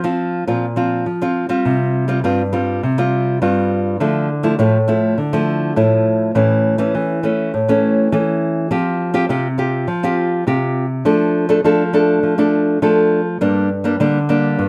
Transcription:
0.04 F3 C4 F4
0.47 A#2 F3 C4 F4
0.76 F3 C4 F4
1.06 F3
1.22 F3 C4 F4
1.49 G3 C4 F4
1.65 C3
2.08 G3 C4 F4
2.24 G2 G3 C4 F4
2.53 G3 C4 F4
2.83 C3
2.98 G3 C4 F4
3.42 G2 G3 C4 F4
4.00 D3 F3 A3 E4
4.43 F3 A3 E4
4.59 A2 F3 A3 E4
4.88 F3 A3 E4
5.18 D3
5.33 F3 A3 E4
5.76 A2 F3 A3 E4
6.35 A2 E3 A3 C#4
6.78 E3 A3 C#4
6.95 E3
7.23 E3 A3 C#4
7.54 A2
7.68 E3 A3 C#4
8.12 E3 A3 C#4
8.71 F3 C4 F4 G4
9.14 C4 F4 G4
9.29 C3 C4 F4 G4
9.58 C4 F4 G4
9.87 F3
10.03 C4 F4 G4
10.47 C3 C4 F4 G4
11.05 F3 A3 D4 A4
11.49 A3 D4 A4
11.64 F3 A3 D4 A4
11.93 A3 D4 A4
12.23 F3
12.38 A3 D4 A4
12.82 F3 A3 D4 A4
13.41 G2 G3 A#3 D4
13.84 G3 A#3 D4
14.00 D3 G3 A#3 D4
14.29 G3 A#3 D4
14.59 G2

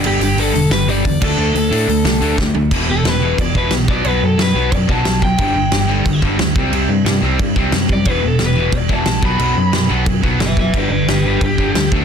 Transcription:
0.04 G1 G2 D3 G3 G4, crash
0.20 G1 G2 D3 G4, open hi-hat
0.36 G1 G2 D3 G3 A4, open hi-hat
0.54 E1 G2 D3, open hi-hat
0.70 G1 G2 D3 B4, snare, open hi-hat
0.86 G1 G2 D3 G3 D5, open hi-hat
1.04 E2 G2 D3, kick, open hi-hat
1.22 D2 D3 A3 D4 A4, kick, crash
1.38 D2 D3 A3 D4
1.55 D2 D3 A3, open hi-hat
1.71 A2 D3 A3 D4, open hi-hat
1.88 D2 D3 A3, open hi-hat
2.04 C2 D3 A3, snare, open hi-hat
2.21 D2 D3 A3 D4, open hi-hat
2.38 D2 D3 A3, kick, snare
2.55 D3 A3, floor tom
2.71 E1 E2 B2 E3, kick, crash
2.88 E1 E2 B2 A4
3.04 E1 E2 B2 B4, snare, crash
3.21 E2 B2 E3
3.38 E1 E2 B2 D5, kick, crash
3.55 E1 E2 B2 E3 B4, kick
3.71 B1 E2 B2, snare, crash
3.88 B1 B2 F#3 B3 D5, kick
4.03 B1 B2 F#3 B3, crash
4.08 B4
4.21 F#2 B2 F#3
4.25 A4
4.38 F#2 B2 F#3, snare, crash
4.42 B4
4.54 B1 B2 F#3 B3
4.71 F#2 B2 F#3 D5, kick, crash
4.88 B1 B2 F#3 B3 A5, kick
5.04 B1 B2 F#3, snare, crash
5.21 B2 F#3 G5, kick
5.38 G1 G2 D3 G3, kick, crash
5.54 G1 G2 D3
5.71 G1 G2 D3, snare, crash
5.87 G2 D3 G3
6.05 G2 D3, kick, crash
6.21 G1 G2 D3 G3, kick
6.37 D2 G2 D3, snare, crash
6.55 C2 C3 G3 C4, kick
6.70 C2 C3 G3 C4, crash
6.89 G2 C3 G3
7.05 G2 C3 G3, snare, crash
7.22 C2 C3 G3 C4
7.39 G2 C3 G3, kick, crash
7.56 C2 C3 G3 C4, kick
7.72 F#2 C3 G3, snare, crash
7.88 C3 G3, kick
7.93 D5
8.05 E1 E2 B2 E3, kick, crash
8.10 B4
8.23 E1 E2 B2
8.27 A4
8.39 E1 E2 B2, snare, crash
8.46 B4
8.55 E2 B2 E3
8.72 E1 E2 B2, kick, crash
8.77 D5
8.88 E1 E2 B2 E3, kick
8.93 A5
9.05 A#1 E2 B2, snare, crash
9.21 B1 B2 F#3 B3 B5, kick
9.38 B1 B2 F#3 B3, crash
9.55 F#2 B2 F#3
9.72 F#2 B2 F#3, snare, crash
9.89 B1 B2 F#3 B3
10.05 F#2 B2 F#3, kick, crash
10.23 B1 B2 F#3 B3, kick
10.39 F#1 B2 F#3 B4 E5, snare, crash
10.57 B2 F#3 B4 E5, kick
10.73 G1 G2 D3 G3, kick, crash
10.77 B4 D5
10.90 G1 G2 D3 B4 D5
11.06 G1 G2 D3 G4 B4, snare, crash
11.24 G2 D3 G3 G4 B4
11.41 G1 G2 D3 G4, kick, crash
11.58 G1 G2 D3 G3, kick
11.74 D2 G2 D3, snare, crash
11.91 D2 D3 A3 D4, kick

